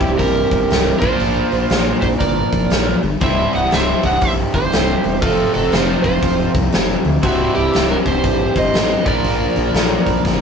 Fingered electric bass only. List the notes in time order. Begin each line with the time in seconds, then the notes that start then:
0.00 C1
0.19 A#1
0.51 G1
0.70 C1
1.02 A#1
1.20 A#1
1.52 A#1
1.70 A#1
2.02 A#1
2.20 G1
2.53 F1
2.71 A#1
3.03 G1
3.21 C1
3.54 C1
3.72 C1
4.03 C1
4.22 A#1
4.54 G1
4.73 C1
5.04 E1
5.22 F1
5.55 F1
5.73 F1
6.04 F1
6.23 D1
6.54 C2
6.73 F1
7.05 D2
7.23 C1
7.56 C1
7.74 C1
8.06 C1
8.24 A#1
8.56 G1
8.73 A1
9.06 A#1
9.24 A#1
9.57 A#1
9.74 A#1
10.07 A#1
10.25 G1